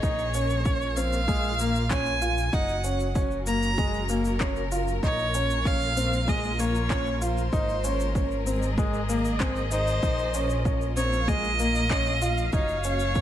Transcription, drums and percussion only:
0.03 kick loud
0.03 shaker soft
0.19 shaker soft
0.34 shaker medium
0.50 shaker soft
0.65 kick loud
0.65 shaker soft
0.81 shaker soft
0.97 shaker medium
1.13 shaker soft
1.28 kick loud
1.28 shaker soft
1.44 shaker soft
1.59 shaker medium
1.75 shaker soft
1.90 kick loud
1.90 clap medium
1.90 shaker soft
2.06 shaker soft
2.22 shaker medium
2.37 shaker soft
2.53 kick loud
2.53 shaker soft
2.68 shaker soft
2.84 shaker medium
3.00 shaker soft
3.15 kick loud
3.15 shaker soft
3.31 shaker soft
3.47 shaker medium
3.63 shaker soft
3.78 kick loud
3.78 shaker soft
3.93 shaker soft
4.09 shaker medium
4.25 shaker soft
4.40 kick loud
4.40 clap medium
4.40 shaker soft
4.56 shaker soft
4.72 shaker medium
4.88 shaker soft
5.03 kick loud
5.03 shaker soft
5.19 shaker soft
5.34 shaker medium
5.50 shaker soft
5.65 kick loud
5.65 shaker soft
5.82 shaker soft
5.97 shaker medium
6.13 shaker soft
6.28 kick loud
6.28 shaker soft
6.44 shaker soft
6.59 shaker medium
6.75 shaker soft
6.90 kick loud
6.90 clap medium
6.90 shaker soft
7.06 shaker soft
7.22 shaker medium
7.38 shaker soft
7.53 kick loud
7.53 shaker soft
7.69 shaker soft
7.84 shaker medium
8.00 shaker soft
8.15 kick loud
8.15 shaker soft
8.31 shaker soft
8.47 shaker medium
8.63 shaker soft
8.78 kick loud
8.78 shaker soft
8.94 shaker soft
9.09 shaker medium
9.25 shaker soft
9.40 kick loud
9.40 clap medium
9.40 shaker soft
9.56 shaker soft
9.71 shaker medium
9.87 shaker soft
10.03 kick loud
10.03 shaker soft
10.19 shaker soft
10.34 shaker medium
10.50 shaker soft
10.65 kick loud
10.65 shaker soft
10.81 shaker soft
10.97 shaker medium
11.13 shaker soft
11.28 kick loud
11.28 shaker soft
11.44 shaker soft
11.59 shaker medium
11.75 shaker soft
11.90 kick medium
11.90 clap medium
11.90 shaker soft
12.06 shaker soft
12.22 shaker medium
12.37 shaker soft
12.53 kick loud
12.53 shaker soft
12.68 shaker soft
12.84 shaker medium
12.99 shaker soft
13.15 kick loud
13.15 shaker soft

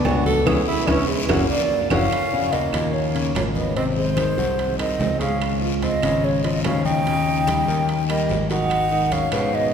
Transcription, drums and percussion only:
0.05 high conga soft
0.05 low timbale medium
0.05 low agogo loud
0.05 short guiro medium
0.05 claves medium
0.26 high conga medium
0.26 short guiro medium
0.47 high conga loud
0.47 high timbale loud
0.47 long guiro loud
0.47 claves loud
0.87 high conga loud
0.87 high timbale loud
0.87 long guiro loud
0.87 claves loud
1.29 high conga loud
1.29 high timbale loud
1.29 long guiro loud
1.29 claves loud
1.90 high conga loud
1.90 high timbale loud
1.90 long guiro loud
1.90 claves loud
2.11 high conga soft
2.11 high timbale medium
2.11 long guiro medium
2.11 claves medium
2.32 high conga soft
2.53 high conga medium
2.53 high timbale medium
2.53 low timbale medium
2.53 short guiro medium
2.73 high conga soft
2.73 high timbale medium
2.73 short guiro medium
2.73 claves medium
2.94 high conga soft
2.94 long guiro medium
3.14 high conga soft
3.14 high timbale medium
3.35 high conga medium
3.35 high timbale medium
3.35 low timbale medium
3.35 short guiro medium
3.35 claves medium
3.55 high conga medium
3.55 short guiro medium
3.76 high conga soft
3.76 high timbale medium
3.76 long guiro medium
3.97 high conga soft
4.17 high conga medium
4.17 high timbale medium
4.17 low timbale medium
4.17 short guiro medium
4.17 claves medium
4.38 high conga soft
4.38 short guiro medium
4.59 high conga soft
4.59 high timbale medium
4.59 long guiro medium
4.79 high conga soft
4.79 high timbale medium
4.79 claves medium
5.00 high conga medium
5.00 low timbale medium
5.00 short guiro medium
5.21 high conga soft
5.21 high timbale medium
5.21 short guiro medium
5.41 high conga soft
5.41 high timbale medium
5.41 long guiro medium
5.41 claves medium
5.62 high conga soft
5.82 high conga medium
5.82 high timbale medium
5.82 low timbale medium
5.82 short guiro medium
6.03 high conga soft
6.03 high timbale medium
6.03 short guiro medium
6.03 claves medium
6.24 high conga soft
6.24 long guiro medium
6.44 high conga soft
6.44 high timbale medium
6.64 high conga medium
6.64 high timbale medium
6.64 low timbale medium
6.64 short guiro medium
6.64 claves medium
6.85 high conga medium
6.85 short guiro medium
7.06 high conga soft
7.06 high timbale medium
7.06 long guiro medium
7.27 high conga soft
7.47 high conga medium
7.47 high timbale medium
7.47 low timbale medium
7.47 short guiro medium
7.47 claves medium
7.68 high conga soft
7.68 short guiro medium
7.88 high conga soft
7.88 high timbale medium
7.88 long guiro medium
8.09 high conga soft
8.09 high timbale medium
8.09 claves medium
8.29 high conga medium
8.29 low timbale medium
8.29 short guiro medium
8.50 high conga soft
8.50 high timbale medium
8.50 short guiro medium
8.70 high conga soft
8.70 high timbale medium
8.70 long guiro medium
8.70 claves medium
8.91 high conga soft
9.12 high conga medium
9.12 high timbale medium
9.12 low timbale medium
9.12 short guiro medium
9.32 high conga soft
9.32 high timbale medium
9.32 short guiro medium
9.32 claves medium
9.53 high conga soft
9.53 long guiro medium

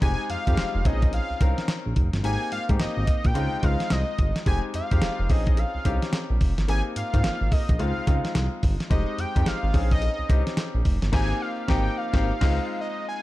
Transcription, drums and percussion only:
0.02 kick medium
0.02 closed hi-hat medium
0.30 closed hi-hat medium
0.47 kick medium
0.47 closed hi-hat medium
0.57 snare loud
0.57 closed hi-hat medium
0.85 kick loud
0.85 closed hi-hat medium
1.02 kick loud
1.02 closed hi-hat medium
1.13 closed hi-hat medium
1.41 kick loud
1.41 closed hi-hat medium
1.58 snare medium
1.58 closed hi-hat medium
1.68 snare loud
1.68 closed hi-hat medium
1.96 kick loud
1.96 closed hi-hat medium
2.13 snare medium
2.13 closed hi-hat soft
2.24 closed hi-hat medium
2.52 closed hi-hat medium
2.69 kick medium
2.69 closed hi-hat medium
2.80 snare loud
2.80 closed hi-hat medium
3.07 kick loud
3.07 closed hi-hat medium
3.24 kick loud
3.24 closed hi-hat soft
3.35 closed hi-hat medium
3.63 kick medium
3.63 closed hi-hat medium
3.80 snare medium
3.80 closed hi-hat medium
3.90 snare loud
3.90 closed hi-hat medium
4.18 kick loud
4.18 closed hi-hat medium
4.36 snare medium
4.36 closed hi-hat medium
4.46 kick loud
4.46 closed hi-hat medium
4.46 cowbell medium
4.74 closed hi-hat medium
4.91 kick medium
4.91 closed hi-hat medium
5.02 snare loud
5.02 closed hi-hat medium
5.02 cowbell medium
5.29 kick loud
5.29 open hi-hat medium
5.29 cowbell medium
5.47 kick medium
5.47 closed hi-hat medium
5.57 closed hi-hat medium
5.57 cowbell medium
5.85 kick medium
5.85 closed hi-hat medium
5.85 cowbell medium
6.02 snare medium
6.02 closed hi-hat medium
6.13 snare loud
6.13 closed hi-hat medium
6.13 cowbell medium
6.41 kick medium
6.41 open hi-hat medium
6.58 snare medium
6.58 closed hi-hat soft
6.68 closed hi-hat medium
6.68 cowbell medium
6.96 closed hi-hat medium
7.14 kick medium
7.14 closed hi-hat medium
7.24 snare loud
7.24 closed hi-hat medium
7.24 cowbell medium
7.51 kick loud
7.51 open hi-hat medium
7.51 cowbell medium
7.69 kick loud
7.69 closed hi-hat medium
7.79 closed hi-hat medium
7.79 cowbell medium
8.07 kick medium
8.07 closed hi-hat medium
8.07 cowbell medium
8.25 snare medium
8.25 closed hi-hat medium
8.35 snare loud
8.35 closed hi-hat medium
8.35 cowbell medium
8.63 kick medium
8.63 open hi-hat medium
8.80 snare medium
8.80 closed hi-hat medium
8.91 kick loud
8.91 closed hi-hat medium
8.91 cowbell medium
9.19 closed hi-hat medium
9.36 kick medium
9.36 closed hi-hat medium
9.46 snare loud
9.46 closed hi-hat medium
9.46 cowbell medium
9.74 kick loud
9.74 open hi-hat medium
9.74 cowbell medium
9.91 kick loud
9.91 closed hi-hat soft
10.02 closed hi-hat medium
10.02 cowbell medium
10.30 kick loud
10.30 closed hi-hat medium
10.30 cowbell medium
10.47 snare medium
10.47 closed hi-hat soft
10.57 snare loud
10.57 closed hi-hat medium
10.57 cowbell medium
10.85 kick medium
10.85 open hi-hat medium
11.02 snare medium
11.02 closed hi-hat medium
11.13 kick loud
11.13 snare loud
11.13 crash medium
11.68 kick loud
11.68 snare loud
12.14 kick loud
12.14 snare loud
12.41 kick loud
12.41 snare loud
12.41 crash medium

